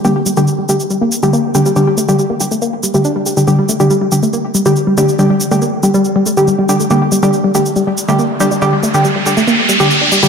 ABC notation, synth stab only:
X:1
M:4/4
L:1/16
Q:1/4=140
K:Gm
V:1 name="Synth stab" clef=bass
[D,G,G] z2 [D,G,G] z2 [D,G,G] z4 [D,G,G] z2 [D,G,G] z | [D,G,G] z2 [D,G,G] z2 [D,G,G] z4 [D,G,G] z3 [D,G,G] | [D,G,G] z2 [D,G,G] z2 [D,G,G] z4 [D,G,G] z2 [D,G,G] z | [D,G,G] z2 [D,G,G] z2 [D,G,G] z4 [D,G,G] z2 [D,G,G] z |
[D,G,G] z2 [D,G,G] z2 [D,G,G] z4 [D,G,G] z2 [D,G,G] z | [D,G,G] z2 [D,G,G] z2 [D,G,G] z4 [D,G,G] z3 [D,G,G] |]